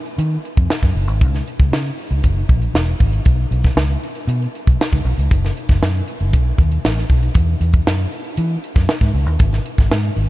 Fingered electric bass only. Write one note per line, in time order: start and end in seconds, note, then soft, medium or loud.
0.18 0.36 D#3 loud
0.58 0.66 F2 medium
0.83 0.91 F#2 medium
0.95 1.07 F#1 medium
1.07 1.23 G#1 medium
1.21 1.39 C#2 loud
1.60 1.69 C#2 medium
1.72 1.90 C#3 medium
2.11 2.20 C#2 medium
2.24 2.41 F#1 loud
2.49 2.67 A#1 medium
2.74 2.92 E1 medium
3.00 3.18 G#1 medium
3.26 3.44 B1 medium
3.51 3.69 B1 loud
3.76 3.94 C#2 medium
4.27 4.46 B2 loud
4.67 4.76 B1 medium
4.92 5.01 C#2 medium
5.05 5.14 B1 loud
5.18 5.27 C#2 medium
5.31 5.49 F#1 medium
5.69 5.78 F#1 medium
5.82 6.00 F#2 loud
6.21 6.33 F#1 medium
6.33 6.51 B1 loud
6.59 6.77 D#2 medium
6.85 7.02 A1 medium
7.10 7.27 B1 loud
7.35 7.53 E2 loud
7.61 7.79 E2 loud
7.87 8.05 F#2 medium
8.38 8.56 E3 loud
8.76 8.85 F#2 medium
9.01 9.10 G#2 medium
9.14 9.26 C#2 loud
9.26 9.36 D#2 medium
9.40 9.58 G#1 medium
9.78 9.87 G#1 medium
9.90 10.09 G#2 medium
10.16 10.29 G#1 medium